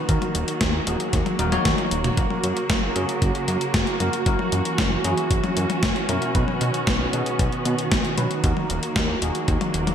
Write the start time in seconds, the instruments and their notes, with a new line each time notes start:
Already playing: string section D#3 F#4
0.09 analog synth bass D#2, tine electric piano D#3 A#3 D#4 F#4 A#4, string section F#3 A#3, kick, closed hi-hat
0.22 closed hi-hat, high tom
0.35 analog synth bass D#1, closed hi-hat
0.48 closed hi-hat
0.61 analog synth bass D#2, kick, snare, closed hi-hat
0.87 analog synth bass D#1, tine electric piano D#3 A#3 D#4 F#4 G#4, closed hi-hat
1.00 closed hi-hat
1.13 analog synth bass D#2, kick, snare, closed hi-hat
1.26 closed hi-hat, high tom
1.39 analog synth bass D#1, tine electric piano D#3 A#3 D#4 F#4 A#4, closed hi-hat
1.52 tine electric piano D#3 A#3 D#4 F#4 C#5, closed hi-hat, high tom
1.65 analog synth bass D#2, kick, snare, closed hi-hat, high tom
1.78 closed hi-hat, high tom
1.91 analog synth bass D#1, closed hi-hat
2.04 closed hi-hat, mid tom
2.17 analog synth bass F#1, string section C#3 F#3, tine electric piano A#3 C#4 F#4 A#4, kick, closed hi-hat
2.30 high tom
2.44 analog synth bass F#2, closed hi-hat
2.57 closed hi-hat
2.70 analog synth bass F#1, kick, snare, closed hi-hat
2.96 analog synth bass F#2, tine electric piano A#3 C#4 F#4 G#4, closed hi-hat
3.09 closed hi-hat
3.22 analog synth bass F#1, kick, closed hi-hat
3.35 closed hi-hat
3.48 analog synth bass F#2, closed hi-hat
3.61 closed hi-hat
3.74 analog synth bass F#1, kick, snare, closed hi-hat
3.87 closed hi-hat
4.00 analog synth bass F#2, tine electric piano A#3 C#4 F#4 A#4, closed hi-hat, high tom
4.13 closed hi-hat
4.26 analog synth bass F#1, string section E3 C#4, tine electric piano F#3 C#4 E4 F#4 A#4, kick, closed hi-hat
4.39 high tom
4.52 analog synth bass F#2, closed hi-hat
4.65 closed hi-hat
4.78 analog synth bass F#1, kick, snare, closed hi-hat
5.04 analog synth bass F#2, tine electric piano F#3 C#4 E4 F#4 G#4, closed hi-hat
5.17 closed hi-hat
5.31 analog synth bass F#1, kick, closed hi-hat
5.44 closed hi-hat, high tom
5.57 analog synth bass F#2, closed hi-hat
5.70 closed hi-hat, high tom
5.83 analog synth bass F#1, kick, snare, closed hi-hat
5.96 closed hi-hat
6.09 analog synth bass F#2, tine electric piano B2 C#4 E4 F#4 A#4, closed hi-hat, high tom
6.22 closed hi-hat
6.35 analog synth bass B1, tine electric piano B2 C#4 D#4 F#4 B4, string section D#3 B3, kick, closed hi-hat
6.48 high tom
6.61 analog synth bass B2, closed hi-hat
6.74 closed hi-hat
6.87 analog synth bass B1, kick, snare, closed hi-hat
7.13 tine electric piano B2 C#4 D#4 F#4 G#4, analog synth bass B2, closed hi-hat
7.26 closed hi-hat
7.39 analog synth bass B1, kick, closed hi-hat
7.52 closed hi-hat
7.65 analog synth bass B2, closed hi-hat
7.79 closed hi-hat
7.92 analog synth bass B1, kick, snare, closed hi-hat
8.05 closed hi-hat
8.18 analog synth bass B2, tine electric piano C#4 D#4 F#4 B4, closed hi-hat, high tom
8.31 closed hi-hat
8.44 analog synth bass D#2, tine electric piano D#3 A#3 D#4 F#4 A#4, string section F#3 A#3, kick, closed hi-hat
8.57 high tom
8.70 analog synth bass D#1, closed hi-hat
8.83 closed hi-hat
8.96 analog synth bass D#2, kick, snare, closed hi-hat
9.22 analog synth bass D#1, tine electric piano D#3 A#3 D#4 F#4 G#4, closed hi-hat
9.35 closed hi-hat
9.48 analog synth bass D#2, kick, closed hi-hat
9.61 closed hi-hat, high tom
9.74 analog synth bass D#1, closed hi-hat
9.87 closed hi-hat, high tom